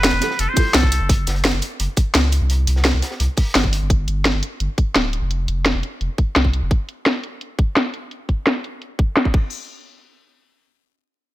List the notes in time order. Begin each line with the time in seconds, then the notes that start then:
Already playing: F1 C4 E4 F4 G4 A4 B4
0.03 snare, closed hi-hat
0.13 F1
0.20 C4 E4 F4 G4 A4, snare, closed hi-hat
0.31 snare
0.39 F1 A4, closed hi-hat
0.49 C5
0.53 C4 E4 F4, kick, closed hi-hat, open hi-hat
0.58 G4 A4
0.74 C2 A4, snare, closed hi-hat
0.83 kick
0.92 closed hi-hat
1.01 F#1
1.09 kick, closed hi-hat
1.27 F#1, snare, closed hi-hat
1.36 closed hi-hat
1.45 snare, closed hi-hat
1.53 F#1
1.62 closed hi-hat
1.80 F#1, closed hi-hat
1.97 kick, closed hi-hat
2.14 C#2, snare, closed hi-hat
2.32 closed hi-hat
2.41 C2
2.50 closed hi-hat
2.67 C2, closed hi-hat
2.76 snare
2.84 snare, closed hi-hat
2.94 C2
3.02 snare, closed hi-hat
3.11 snare
3.20 C2, closed hi-hat
3.37 kick, closed hi-hat, open hi-hat
3.55 G1, snare, closed hi-hat
3.64 kick
3.73 closed hi-hat
3.82 G1
3.90 kick, closed hi-hat
4.08 G1, closed hi-hat
4.25 snare, closed hi-hat
4.34 G1
4.43 closed hi-hat
4.60 G1, closed hi-hat
4.78 kick, closed hi-hat
4.95 D1, snare, closed hi-hat
5.13 closed hi-hat
5.22 F1
5.31 closed hi-hat
5.48 F1, closed hi-hat
5.66 snare, closed hi-hat
5.75 F1
5.83 closed hi-hat
6.01 F1, closed hi-hat
6.18 kick, closed hi-hat
6.36 C2, snare, closed hi-hat
6.45 kick
6.53 closed hi-hat
6.62 F1
6.71 kick, closed hi-hat
6.89 closed hi-hat
7.06 snare, closed hi-hat
7.24 closed hi-hat
7.41 closed hi-hat
7.59 kick, closed hi-hat
7.76 snare, closed hi-hat
7.94 closed hi-hat
8.11 closed hi-hat
8.29 kick, closed hi-hat
8.47 snare, closed hi-hat
8.64 closed hi-hat
8.82 closed hi-hat
8.99 kick, closed hi-hat
9.17 snare, closed hi-hat
9.25 kick, snare
9.34 kick, crash